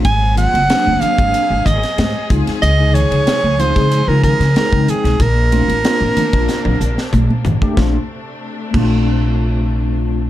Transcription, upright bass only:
0, 0, Header, 1, 3, 480
1, 0, Start_track
1, 0, Tempo, 644468
1, 38, Time_signature, 4, 2, 24, 8
1, 7671, End_track
2, 0, Start_track
2, 0, Title_t, "Upright bass"
2, 0, Program_c, 0, 32
2, 36, Note_on_c, 0, 32, 96
2, 339, Note_off_c, 0, 32, 0
2, 402, Note_on_c, 0, 30, 80
2, 497, Note_off_c, 0, 30, 0
2, 644, Note_on_c, 0, 30, 75
2, 738, Note_off_c, 0, 30, 0
2, 883, Note_on_c, 0, 32, 75
2, 977, Note_off_c, 0, 32, 0
2, 1120, Note_on_c, 0, 32, 82
2, 1215, Note_off_c, 0, 32, 0
2, 1232, Note_on_c, 0, 32, 83
2, 1338, Note_off_c, 0, 32, 0
2, 1477, Note_on_c, 0, 44, 89
2, 1581, Note_off_c, 0, 44, 0
2, 1715, Note_on_c, 0, 37, 76
2, 1819, Note_off_c, 0, 37, 0
2, 1955, Note_on_c, 0, 37, 87
2, 2257, Note_off_c, 0, 37, 0
2, 2316, Note_on_c, 0, 37, 86
2, 2412, Note_off_c, 0, 37, 0
2, 2557, Note_on_c, 0, 37, 72
2, 2757, Note_off_c, 0, 37, 0
2, 2799, Note_on_c, 0, 49, 81
2, 2998, Note_off_c, 0, 49, 0
2, 3037, Note_on_c, 0, 49, 81
2, 3237, Note_off_c, 0, 49, 0
2, 3277, Note_on_c, 0, 49, 77
2, 3372, Note_off_c, 0, 49, 0
2, 3517, Note_on_c, 0, 49, 79
2, 3612, Note_off_c, 0, 49, 0
2, 3756, Note_on_c, 0, 35, 83
2, 3852, Note_off_c, 0, 35, 0
2, 3870, Note_on_c, 0, 34, 104
2, 4174, Note_off_c, 0, 34, 0
2, 4233, Note_on_c, 0, 33, 79
2, 4330, Note_off_c, 0, 33, 0
2, 4473, Note_on_c, 0, 33, 72
2, 4570, Note_off_c, 0, 33, 0
2, 4717, Note_on_c, 0, 34, 79
2, 4812, Note_off_c, 0, 34, 0
2, 4957, Note_on_c, 0, 34, 88
2, 5052, Note_off_c, 0, 34, 0
2, 5068, Note_on_c, 0, 34, 74
2, 5175, Note_off_c, 0, 34, 0
2, 5309, Note_on_c, 0, 34, 93
2, 5415, Note_off_c, 0, 34, 0
2, 5549, Note_on_c, 0, 33, 79
2, 5655, Note_off_c, 0, 33, 0
2, 5789, Note_on_c, 0, 34, 81
2, 5930, Note_off_c, 0, 34, 0
2, 6509, Note_on_c, 0, 34, 86
2, 7671, Note_off_c, 0, 34, 0
2, 7671, End_track
3, 0, Start_track
3, 0, Title_t, "Muted upright bass strokes"
3, 762, Note_on_c, 9, 29, 31
3, 837, Note_off_c, 9, 29, 0
3, 1847, Note_on_c, 9, 29, 39
3, 1922, Note_off_c, 9, 29, 0
3, 2432, Note_on_c, 9, 29, 32
3, 2506, Note_off_c, 9, 29, 0
3, 3392, Note_on_c, 9, 29, 34
3, 3467, Note_off_c, 9, 29, 0
3, 4588, Note_on_c, 9, 29, 34
3, 4662, Note_off_c, 9, 29, 0
3, 5674, Note_on_c, 9, 29, 35
3, 5749, Note_off_c, 9, 29, 0
3, 7671, End_track
0, 0, End_of_file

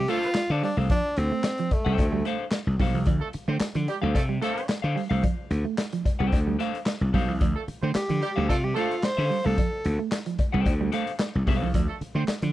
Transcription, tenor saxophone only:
0, 0, Header, 1, 2, 480
1, 0, Start_track
1, 0, Key_signature, -1, "minor"
1, 0, Tempo, 542005
1, 796, Time_signature, 4, 2, 24, 8
1, 11092, End_track
2, 0, Start_track
2, 0, Title_t, "Tenor saxophone"
2, 0, Program_c, 0, 66
2, 0, Note_on_c, 0, 67, 98
2, 85, Note_on_c, 0, 65, 117
2, 98, Note_off_c, 0, 67, 0
2, 452, Note_on_c, 0, 62, 90
2, 465, Note_off_c, 0, 65, 0
2, 561, Note_off_c, 0, 62, 0
2, 571, Note_on_c, 0, 62, 86
2, 676, Note_off_c, 0, 62, 0
2, 805, Note_on_c, 0, 62, 114
2, 1041, Note_on_c, 0, 60, 94
2, 1055, Note_off_c, 0, 62, 0
2, 1530, Note_on_c, 0, 57, 81
2, 1543, Note_off_c, 0, 60, 0
2, 2004, Note_off_c, 0, 57, 0
2, 7043, Note_on_c, 0, 67, 82
2, 7488, Note_off_c, 0, 67, 0
2, 7524, Note_on_c, 0, 65, 78
2, 7654, Note_on_c, 0, 67, 71
2, 7667, Note_off_c, 0, 65, 0
2, 7763, Note_off_c, 0, 67, 0
2, 7768, Note_on_c, 0, 65, 91
2, 8008, Note_on_c, 0, 72, 117
2, 8021, Note_off_c, 0, 65, 0
2, 8376, Note_on_c, 0, 69, 91
2, 8390, Note_off_c, 0, 72, 0
2, 8851, Note_off_c, 0, 69, 0
2, 11092, End_track
0, 0, End_of_file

